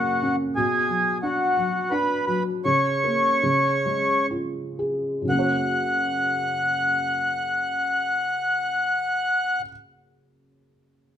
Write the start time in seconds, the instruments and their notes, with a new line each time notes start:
Already playing: felt piano F#2 C#3 A#3 C#4, accordion F#4
0.23 felt piano C#4
0.56 felt piano B2, accordion G#4
0.89 felt piano F#3
1.23 felt piano D4, accordion F#4
1.57 felt piano F#3
1.91 felt piano D4, accordion B4
2.27 felt piano F#3, accordion B4
2.65 felt piano C#3, accordion C#5
3.04 felt piano A#3
3.43 felt piano C#3
3.86 felt piano G#3
4.31 felt piano F4
4.79 felt piano G#4
5.22 felt piano F#2 C#3
5.29 felt piano A#3 C#4, accordion F#5
5.36 felt piano F#4 C#5